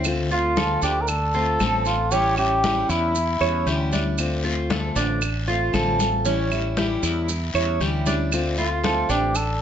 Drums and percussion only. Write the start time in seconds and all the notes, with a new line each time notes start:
0.04 high conga, long guiro, claves, maracas
0.31 high conga, maracas
0.57 high conga, short guiro, maracas
0.82 high conga, short guiro, maracas
1.08 high conga, long guiro, claves, maracas
1.33 high conga, maracas
1.60 high conga, short guiro, claves, maracas
1.85 short guiro, maracas
2.11 high conga, long guiro, maracas
2.37 high conga, claves, maracas
2.64 high conga, short guiro, maracas
2.90 short guiro, maracas
3.15 high conga, long guiro, maracas
3.41 high conga, claves, maracas
3.67 high conga, short guiro, maracas
3.92 high conga, short guiro, maracas
4.18 long guiro, claves, maracas
4.44 high conga, maracas
4.70 high conga, short guiro, maracas
4.96 high conga, short guiro, maracas
5.22 high conga, long guiro, claves, maracas
5.48 high conga, maracas
5.74 high conga, short guiro, claves, maracas
5.99 high conga, short guiro, maracas
6.25 high conga, long guiro, maracas
6.51 high conga, claves, maracas
6.77 high conga, short guiro, maracas
7.03 short guiro, maracas
7.29 high conga, long guiro, maracas
7.55 high conga, claves, maracas
7.81 high conga, short guiro, maracas
8.06 high conga, short guiro, maracas
8.32 high conga, long guiro, claves, maracas
8.58 high conga, maracas
8.84 high conga, short guiro, maracas
9.10 high conga, short guiro, maracas
9.35 high conga, long guiro, claves, maracas